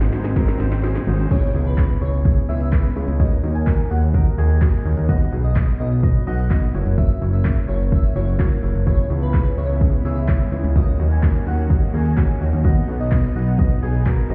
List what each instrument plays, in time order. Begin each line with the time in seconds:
Already playing: analog synth pad C3 D#3 F#3 G#3 D#4, kora C4 G#4 C5, riser
0.01 analog synth bass G#1, kora D#4, snare, closed hi-hat, shaker
0.12 analog synth bass G#1, grand piano G#3 F#4 C5, kora G#4, snare, open hi-hat, shaker
0.24 kora C4, snare, closed hi-hat, shaker
0.36 grand piano G#3 F#4 A#4, kora C4, kick, snare, shaker
0.48 kora D#4, snare, closed hi-hat, shaker
0.60 analog synth bass G#1, grand piano G#3 F#4 C5, kora C5, snare, open hi-hat, shaker
0.72 kora C5, snare, closed hi-hat, shaker
0.83 grand piano G#3 F#4 C5, kora G#4, snare, tambourine, shaker
0.95 kora D#4, snare, closed hi-hat, shaker
1.07 analog synth bass G#1, grand piano G#3 F#4 C5, kora D#4, open hi-hat, shaker
1.19 kora C5, closed hi-hat, shaker
1.31 grand piano B3 E4 G#4 C#5, digital synth lead C#5, kick, crash, impact, shaker
1.42 closed hi-hat, shaker
1.54 analog synth bass C#2, grand piano B3 E4 G#4 C#5, open hi-hat, shaker
1.66 digital synth lead B4, closed hi-hat, shaker
1.78 grand piano B3 E4 G#4 C#5, kick, clap, tambourine, shaker
1.90 closed hi-hat, shaker
2.01 analog synth bass C#2, grand piano B3 E4 G#4 C#5, digital synth lead C#5, open hi-hat, shaker
2.14 closed hi-hat, shaker
2.25 grand piano B3 E4 G#4 C#5, kick, shaker
2.37 closed hi-hat, shaker
2.49 analog synth bass C#2, grand piano B3 E4 G#4 C#5, digital synth lead E5, open hi-hat, shaker
2.61 closed hi-hat, shaker
2.72 grand piano B3 E4 G#4 B4, kick, clap, tambourine, shaker
2.84 closed hi-hat, shaker
2.96 analog synth bass C#2, grand piano B3 E4 G#4 C#5, open hi-hat, shaker
3.08 analog synth bass C#2, closed hi-hat, shaker
3.19 grand piano A#3 D#4 F#4 C#5, digital synth lead D#5, kick, shaker
3.31 closed hi-hat, shaker
3.43 analog synth bass D#2, grand piano A#3 D#4 F#4 C#5, open hi-hat, shaker
3.55 digital synth lead G#5, closed hi-hat, shaker
3.67 grand piano A#3 D#4 F#4 A#4, kick, clap, tambourine, shaker
3.79 closed hi-hat, shaker
3.90 analog synth bass D#2, grand piano A#3 D#4 F#4 C#5, digital synth lead F#5, open hi-hat, shaker
4.03 closed hi-hat, shaker
4.14 grand piano A#3 D#4 F#4 A#4, kick, shaker
4.26 closed hi-hat, shaker
4.38 analog synth bass D#2, grand piano A#3 D#4 F#4 G#4, digital synth lead G#5, open hi-hat, shaker
4.50 closed hi-hat, shaker
4.61 grand piano A#3 D#4 F#4 G#4, kick, clap, tambourine, shaker
4.74 closed hi-hat, shaker
4.85 analog synth bass D#2, grand piano A#3 D#4 F#4 C#5, open hi-hat, shaker
4.97 analog synth bass D#2, closed hi-hat, shaker
5.09 grand piano B3 D#4 F#4 D#5, digital synth lead F#5, kick, shaker
5.20 closed hi-hat, shaker
5.32 analog synth bass B1, grand piano B3 D#4 F#4 G#4, open hi-hat, shaker
5.44 digital synth lead D#5, closed hi-hat, shaker
5.56 grand piano B3 D#4 F#4 D#5, kick, clap, tambourine, shaker
5.68 closed hi-hat, shaker
5.80 analog synth bass B1, grand piano B3 D#4 F#4 C#5, digital synth lead D#5, open hi-hat, shaker
5.92 closed hi-hat, shaker
6.03 grand piano B3 D#4 F#4 D#5, kick, shaker
6.15 closed hi-hat, shaker
6.27 analog synth bass B1, grand piano B3 D#4 F#4 D#5, digital synth lead F#5, open hi-hat, shaker
6.39 closed hi-hat, shaker
6.50 grand piano B3 D#4 F#4 D#5, kick, clap, tambourine, shaker
6.62 closed hi-hat, shaker
6.74 analog synth bass F#1, grand piano A#3 E4 F#4 C#5, open hi-hat, shaker
6.86 analog synth bass F#1, closed hi-hat, shaker
6.98 digital synth lead E5, kick, shaker
7.09 closed hi-hat, shaker
7.21 analog synth bass F#1, grand piano A#3 E4 F#4 C#5, open hi-hat, shaker
7.33 digital synth lead E5, closed hi-hat, shaker
7.45 grand piano A#3 E4 F#4 C#5, kick, clap, tambourine, shaker
7.57 closed hi-hat, shaker
7.68 analog synth bass F#1, grand piano A#3 E4 F#4 C#5, digital synth lead C#5, open hi-hat, shaker
7.80 closed hi-hat, shaker
7.92 grand piano A#3 E4 F#4 C#5, digital synth lead E5, kick, shaker
8.04 closed hi-hat, shaker
8.15 analog synth bass F#1, grand piano A#3 E4 F#4 C#5, digital synth lead C#5, open hi-hat, shaker
8.28 closed hi-hat, shaker
8.39 grand piano A#3 E4 F#4 C#5, kick, clap, tambourine, shaker
8.51 closed hi-hat, shaker
8.63 analog synth bass F#1, grand piano A#3 E4 F#4 C#5, open hi-hat, shaker
8.75 analog synth bass F#1, closed hi-hat, shaker
8.86 analog synth pad C#3 E3 G#3 B3 E4, grand piano B3 E4 G#4 C#5, digital synth lead C#5, kick, shaker
8.98 closed hi-hat, shaker
9.10 analog synth bass C#2, grand piano B3 E4 G#4 C#5, open hi-hat, shaker
9.22 digital synth lead B4, closed hi-hat, shaker
9.34 grand piano B3 E4 G#4 C#5, kick, clap, tambourine, shaker
9.46 closed hi-hat, shaker
9.57 analog synth bass C#2, grand piano B3 E4 G#4 C#5, digital synth lead C#5, open hi-hat, shaker
9.69 closed hi-hat, shaker
9.81 grand piano B3 E4 G#4 C#5, kick, shaker
9.93 closed hi-hat, shaker
10.05 analog synth bass C#2, grand piano B3 E4 G#4 C#5, digital synth lead E5, open hi-hat, shaker
10.16 closed hi-hat, shaker
10.28 grand piano B3 E4 G#4 C#5, kick, clap, tambourine, shaker
10.40 closed hi-hat, shaker
10.52 analog synth bass C#2, grand piano B3 E4 G#4 C#5, open hi-hat, shaker
10.64 analog synth bass C#2, closed hi-hat, shaker
10.76 analog synth pad D#3 F#3 A#3 C#4 F#4, grand piano A#3 D#4 F#4 C#5, digital synth lead D#5, kick, shaker
10.87 closed hi-hat, shaker
10.99 analog synth bass D#2, grand piano A#3 D#4 F#4 C#5, open hi-hat, shaker
11.11 digital synth lead G#5, closed hi-hat, shaker
11.23 grand piano A#3 D#4 F#4 C#5, kick, clap, tambourine, shaker
11.35 closed hi-hat, shaker
11.46 analog synth bass D#2, grand piano A#3 D#4 F#4 C#5, digital synth lead F#5, open hi-hat, shaker
11.59 closed hi-hat, shaker
11.70 grand piano A#3 D#4 F#4 C#5, kick, shaker
11.82 closed hi-hat, shaker
11.94 analog synth bass D#2, grand piano A#3 D#4 F#4 G#4, digital synth lead G#5, open hi-hat, shaker
12.06 closed hi-hat, shaker
12.17 grand piano A#3 D#4 F#4 C#5, kick, clap, tambourine, shaker
12.29 closed hi-hat, shaker
12.41 analog synth bass D#2, grand piano A#3 D#4 F#4 C#5, open hi-hat, shaker
12.53 analog synth bass D#2, closed hi-hat, shaker
12.64 grand piano B3 D#4 F#4 D#5, analog synth pad B3 D#4, digital synth lead F#5, kick, shaker
12.76 closed hi-hat, shaker
12.88 analog synth bass B1, grand piano B3 D#4 F#4 C#5, open hi-hat, shaker
13.00 digital synth lead D#5, closed hi-hat, shaker
13.11 grand piano B3 D#4 F#4 D#5, kick, clap, tambourine, shaker
13.24 closed hi-hat, shaker
13.35 analog synth bass B1, grand piano B3 D#4 F#4 D#5, digital synth lead F#5, open hi-hat, shaker
13.47 closed hi-hat, shaker
13.59 grand piano B3 D#4 F#4 D#5, kick, shaker
13.71 closed hi-hat, shaker
13.82 analog synth bass B1, grand piano B3 D#4 F#4 G#4, digital synth lead G#5, open hi-hat, shaker
13.94 closed hi-hat, shaker
14.06 grand piano B3 D#4 F#4 A#4, kick, clap, tambourine, shaker
14.18 closed hi-hat, shaker
14.30 analog synth bass G#1, analog synth pad C3 D#3 G#3, grand piano C4 F#4 G#4 D#5, open hi-hat, shaker